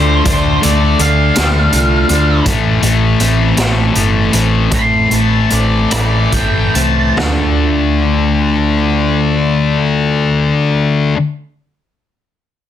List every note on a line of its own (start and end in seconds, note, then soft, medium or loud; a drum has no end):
0.00 0.20 D2 medium
0.00 0.24 D3 medium
0.00 0.25 A3 medium
0.00 0.61 A3 medium
0.00 0.24 D4 medium
0.00 1.35 F4 medium
0.00 0.60 C5 medium
0.25 0.56 D2 medium
0.25 0.60 D3 medium
0.25 0.62 A3 medium
0.25 0.62 D4 medium
0.25 kick medium
0.25 closed hi-hat medium
0.62 0.93 D2 medium
0.62 0.98 D3 medium
0.62 0.99 A3 medium
0.62 0.98 D4 medium
0.62 0.98 D5 medium
0.62 closed hi-hat medium
0.99 1.30 D2 medium
0.99 1.34 D3 medium
0.99 1.36 A3 medium
0.99 1.35 D4 medium
0.99 2.43 F5 medium
0.99 closed hi-hat medium
1.35 1.67 D2 medium
1.35 1.71 D3 medium
1.35 1.73 A3 medium
1.35 1.72 D4 medium
1.35 snare loud
1.35 closed hi-hat medium
1.73 2.03 C2 medium
1.73 2.08 D3 medium
1.73 2.09 A3 medium
1.73 2.08 D4 medium
1.73 2.46 F4 medium
1.73 closed hi-hat medium
2.09 2.40 D2 medium
2.09 2.44 D3 medium
2.09 2.45 A3 medium
2.09 2.44 D4 medium
2.09 closed hi-hat medium
2.46 2.77 A1 medium
2.46 2.81 A2 medium
2.46 2.82 E3 medium
2.46 2.82 A3 medium
2.46 kick loud
2.46 closed hi-hat medium
2.82 3.14 A1 medium
2.82 3.20 A2 medium
2.82 3.21 E3 medium
2.82 3.21 A3 medium
2.82 closed hi-hat medium
3.20 3.51 A1 medium
3.20 3.56 A2 medium
3.20 3.56 E3 medium
3.20 3.58 A3 medium
3.20 4.33 C4 medium
3.20 closed hi-hat medium
3.57 3.89 A1 medium
3.57 3.94 A2 medium
3.57 3.94 E3 medium
3.57 3.96 A3 medium
3.57 snare loud
3.57 closed hi-hat medium
3.95 4.27 G1 medium
3.95 4.32 A2 medium
3.95 4.32 E3 medium
3.95 4.33 A3 medium
3.95 5.92 E4 medium
3.95 closed hi-hat medium
4.33 4.66 A1 medium
4.33 4.70 A2 medium
4.33 4.71 E3 medium
4.33 4.71 A3 medium
4.33 5.50 C4 medium
4.33 closed hi-hat medium
4.71 5.04 A1 medium
4.71 5.09 A2 medium
4.71 5.10 E3 medium
4.71 5.10 A3 medium
4.71 5.11 C6 medium
4.71 kick medium
4.71 closed hi-hat medium
5.10 5.44 A1 medium
5.10 5.50 A2 medium
5.10 5.50 E3 medium
5.10 5.50 A3 medium
5.10 5.51 A5 medium
5.10 closed hi-hat medium
5.50 5.85 A1 medium
5.50 5.91 A2 medium
5.50 5.92 E3 medium
5.50 5.92 A3 medium
5.50 6.75 C4 medium
5.50 5.91 D5 medium
5.50 closed hi-hat medium
5.91 6.26 A1 medium
5.91 6.32 A2 medium
5.91 6.32 E3 medium
5.91 6.33 A3 medium
5.91 6.32 D5 medium
5.91 cross-stick medium
5.91 closed hi-hat medium
6.32 6.67 G1 medium
6.32 6.75 A2 medium
6.32 6.75 E3 medium
6.32 6.75 A3 medium
6.32 7.18 E4 medium
6.32 6.74 G5 medium
6.32 kick medium
6.32 closed hi-hat medium
6.75 7.11 C2 medium
6.75 7.16 A2 medium
6.75 7.16 E3 medium
6.75 7.16 A3 medium
6.75 7.18 C4 medium
6.75 7.17 A5 medium
6.75 closed hi-hat medium
7.17 11.09 D2 medium
7.17 11.13 D3 medium
7.17 11.15 A3 medium
7.17 11.16 F4 medium
7.17 snare medium
7.17 floor tom medium
7.22 11.17 D4 medium